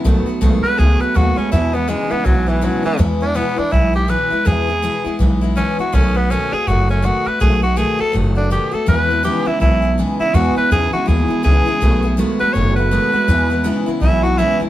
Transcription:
X:1
M:4/4
L:1/8
Q:"Swing" 1/4=163
K:E
V:1 name="Tenor saxophone"
z3 B G B F C | E B, G, B, F, E, F, E, | z =D B, D E =G B2 | G4 z2 C F |
C B, C G F C F B | G F G A z =D =G A | B2 =G E E2 z E | F B G F G2 G2- |
G2 z B c B3- | B3 z E F E z |]
V:2 name="Steel-string acoustic guitar"
[B,,D,A,B,F] [A,B,F] [B,,D,A,B,F] [A,B,F] [D,A,B,F] [A,B,F] [B,,D,A,B,F] [A,B,F] | [E,,B,,E,G,B,E] [E,G,B,E] [E,,B,,E,G,B,E] [E,G,B,E] [E,G,B,E] [E,G,B,E] [E,,B,,E,G,B,E] [E,G,B,E] | [E,,B,,E,G,B,E] [E,G,B,E] [E,,B,,E,G,B,E] [E,G,B,E] [E,G,B,E] [E,G,B,E] [E,,B,,E,G,B,E] [E,G,B,E] | [E,,B,,E,G,B,E] [E,G,B,E] [E,,B,,E,G,B,E] [E,G,B,E] [E,G,B,E] [E,G,B,E] [E,,B,,E,G,B,E] [E,G,B,E] |
[B,,D,A,B,F] [A,B,F] [B,,D,A,B,F] [A,B,F] [D,A,B,F] [A,B,F] [B,,D,A,B,F] [A,B,F] | [B,,D,A,B,F] [A,B,F] [B,,D,A,B,F] [A,B,F] [D,A,B,F] [A,B,F] [B,,D,A,B,F] [A,B,F] | [E,,B,,E,G,B,E] [E,G,B,E] [E,,B,,E,G,B,E] [E,G,B,E] [E,G,B,E] [E,G,B,E] [E,,B,,E,G,B,E] [E,G,B,E] | [E,,B,,E,G,B,E] [E,G,B,E] [E,,B,,E,G,B,E] [E,G,B,E] [E,G,B,E] [E,G,B,E] [E,,B,,E,G,B,E] [E,G,B,E] |
[B,,D,A,B,F] [A,B,F] [B,,D,A,B,F] [A,B,F] [D,A,B,F] [A,B,F] [B,,D,A,B,F] [A,B,F] | [E,,B,,E,G,B,E] [E,G,B,E] [E,,B,,E,G,B,E] [E,G,B,E] [E,G,B,E] [E,G,B,E] [E,,B,,E,G,B,E] [E,G,B,E] |]
V:3 name="Clean electric guitar" clef=bass
[B,,F,]2 [B,,G,] [B,,G,] [B,,F,]2 [B,,G,] [B,,G,] | [E,,B,,]2 [E,,C,] [E,,C,] [E,,B,,]2 [E,,C,] [E,,C,] | z8 | z8 |
z8 | z8 | [E,,B,,]2 [E,,C,] [E,,C,] [E,,B,,]2 [E,,C,] [E,,C,] | [E,,B,,]2 [E,,C,] [E,,C,] [E,,B,,]2 [E,,C,] [E,,C,] |
[B,,F,]2 [B,,G,] [B,,G,] [B,,F,]2 [B,,G,] [B,,G,] | [E,,B,,]2 [E,,C,] [E,,C,] [E,,B,,]2 [E,,C,] [E,,C,] |]
V:4 name="Upright bass" clef=bass
B,,, z B,,, z C,, z D,, z | E,,3 z B,,,3 z | E,,3 z B,,,3 z | E,,3 z B,,,3 z |
B,,,3 z F,,,3 z | B,,,3 z F,,,3 z | E,,3 z B,,,3 z | E,, z E,, z D,, z C,, z |
B,,,3 z F,,,3 z | E,,3 z B,,,3 z |]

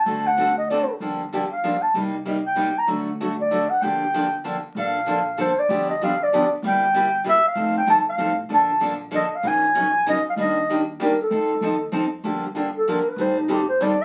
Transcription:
X:1
M:3/4
L:1/16
Q:"Swing" 1/4=192
K:Gm
V:1 name="Clarinet"
a2 ^f4 e2 d3 z | z6 f4 a2 | z6 g4 b2 | z6 d4 ^f2 |
g8 z4 | [K:Bb] f8 c2 d2- | d2 e2 f2 d4 z2 | g8 =e2 f2- |
f2 g2 a2 f4 z2 | a4- a/2 z3 z/2 e3/2 e/2 f2 | _a8 e2 f2 | e6 z2 B2 A2- |
A8 z4 | [K:Gm] z6 A2 B2 =B2 | c2 E2 G2 c2 d2 =e2 |]
V:2 name="Steel-string acoustic guitar"
[D,A,C^FA]2 z2 [D,A,CFA]2 z2 [D,A,CFA]2 z2 | [D,F,B,DG]2 z2 [D,F,B,DG]2 z2 [D,F,B,DG]2 z2 | [C,G,B,EG]2 z2 [C,G,B,EG]2 z2 [C,G,B,EG]2 z2 | [D,^F,A,D^F]2 z2 [D,F,A,DF]2 z2 [D,F,A,DF]2 z2 |
[D,F,B,DG]2 z2 [D,F,B,DG]2 z2 [D,F,B,DG]2 z2 | [K:Bb] [D,F,B,DA]2 z2 [D,F,B,DA]2 z2 [D,F,B,DA]2 z2 | [D,F,=B,DG]2 z2 [D,F,B,DG]2 z2 [D,F,B,DG]2 z2 | [C,G,B,=EG]2 z2 [C,G,B,EG]2 z2 [C,G,B,EG]2 z2 |
[F,CEA]2 z2 [F,CEA]2 z2 [F,CEA]2 z2 | [D,F,B,DA]2 z2 [D,F,B,DA]2 z2 [D,F,B,DA]2 z2 | [_D,_G,_DEB]2 z2 [D,G,DEB]2 z2 [D,G,DEB]2 z2 | [E,G,B,DG]2 z2 [E,G,B,DG]2 z2 [E,G,B,DG]2 z2 |
[F,CEA]2 z2 [F,CEA]2 z2 [F,CEA]2 z2 | [K:Gm] [D,F,B,DG]2 z2 [D,F,B,DG]2 z2 [D,F,B,DG]2 z2 | [E,G,CGA]2 z2 [E,G,CGA]2 z2 [E,G,CGA]2 z2 |]
V:3 name="Upright bass" clef=bass
D,,12 | G,,,12 | C,,12 | D,,12 |
G,,,12 | [K:Bb] B,,,12 | G,,,12 | G,,,12 |
F,,,4 G,,,4 A,,,4 | B,,,12 | B,,,12 | E,,12 |
F,,4 E,,4 F,,4 | [K:Gm] G,,,12 | A,,,12 |]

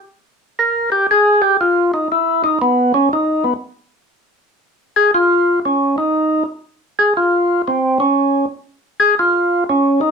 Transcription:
X:1
M:4/4
L:1/8
Q:"Swing" 1/4=119
K:Fm
V:1 name="Tonewheel organ"
z2 B G A G F E | =E _E =B, D E B, z2 | z3 A F2 D E- | E z2 A F2 C D- |
D z2 A F2 D E |]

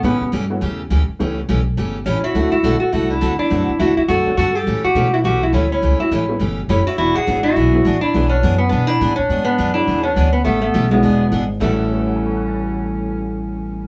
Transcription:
X:1
M:4/4
L:1/8
Q:"Swing" 1/4=207
K:Amix
V:1 name="Clarinet"
C2 z6 | z6 E F- | F F2 A F E2 E- | E2 F F A2 A A- |
A G2 F G F E E- | E F E2 z2 E F | F ^G2 F4 E- | E D2 C D E2 D- |
D D2 E2 D2 C | B, B,2 B,4 z | C8- | C8 |]
V:2 name="Hollow-body jazz guitar"
B,2 z6 | z6 C E- | E E2 F E D2 D- | D2 E E F2 F G- |
G F2 E F E C C- | C E C2 z2 C E | E F2 E4 D- | D C2 B, B, D2 C- |
C B,2 D2 C2 B, | A, A,2 ^G,4 z | A,8- | A,8 |]
V:3 name="Honky-tonk piano"
z8 | z8 | z8 | z8 |
z8 | z8 | z8 | z8 |
z8 | z8 | z2 [Acfac'f'a']6- | [Acfac'f'a']8 |]
V:4 name="Honky-tonk piano"
[A,B,CEG] z2 [A,B,CEF] z4 | [A,B,CEG] z6 z | [F,A,=CDE] z6 z | [F,A,=CDE] z4 [F,A,CDF] z2 |
z2 [G,A,B,CE]3 z3 | z3 [G,A,B,CE] z4 | z2 [F,^G,B,DE] z2 [F,G,B,DE] z2 | [F,^G,B,DE]3 z4 z |
z3 [F,^G,B,DE]3 z2 | z3 [F,^G,B,DE]3 z2 | [A,,E,G,B,CF]8- | [A,,E,G,B,CF]8 |]
V:5 name="Steel-string acoustic guitar"
[C,E,A,CG] z [C,E,A,CG] z [C,E,A,CG] z [C,E,A,CG] z | [C,E,A,CG] z [C,E,A,CG] z [C,E,A,CG] z [C,E,A,CG] z | [D,A,=CFA] z [D,A,CFA] z [D,A,CFA] z [D,A,CFA] z | [D,A,=CFA] z [D,A,CFA] z [D,A,CFA] z [D,A,CFA] z |
[C,E,A,CG] z [C,E,A,CG] z [C,E,A,CG] z [C,E,A,CG] z | [C,E,A,CG] z [C,E,A,CG] z [C,E,A,CG] z [C,E,A,CG] z | [E,B,D^G] z [E,B,DG] z [E,B,DG] z [E,B,DG] z | [E,B,D^G] z [E,B,DG] z [E,B,DG] z [E,B,DG] z |
[E,B,D^G] z [E,B,DG] z [E,B,DG] z [E,B,DG] z | [C,E,A,CG] z [C,E,A,CG] z [E,B,D^G] z [E,B,DG] z | [A,,E,G,CEA]8- | [A,,E,G,CEA]8 |]
V:6 name="Upright bass" clef=bass
A,, z G,,2 E,,2 D,, z | C,,2 B,,,2 G,,,2 A,,, z | D,, z B,,, z =C,,2 D,, z | F,, z E,, z F,, z G,,2 |
A,, z B,,2 B,,,2 D,,2 | C,, z A,,,2 G,,,2 F,,, z | E,,, z ^G,,,2 B,,,2 A,,, z | B,,,2 F,,2 B,,2 A,, z |
^G,,2 F,,2 E,,2 D,,2 | A,,,2 B,,,2 E,,,2 ^G,,,2 | A,,,8- | A,,,8 |]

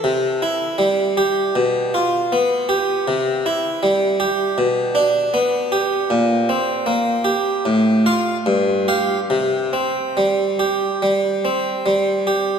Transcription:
X:1
M:4/4
L:1/8
Q:1/4=78
K:C
V:1 name="Harpsichord"
C, E G, G B,, F B, G | C, E G, G B,, D B, G | _B,, C _B, G A,, [Ff] G,, [Gf] | C, C G, G G, C G, G |]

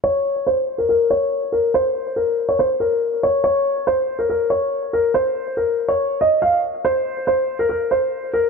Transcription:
X:1
M:4/4
L:1/16
Q:1/4=141
K:Bbm
V:1 name="Grand piano"
d4 c3 B B2 d4 B2 | c4 B3 d c2 B4 d2 | d4 c3 B B2 d4 B2 | c4 B3 d3 e2 f2 z2 |
c4 c3 B B2 c4 B2 |]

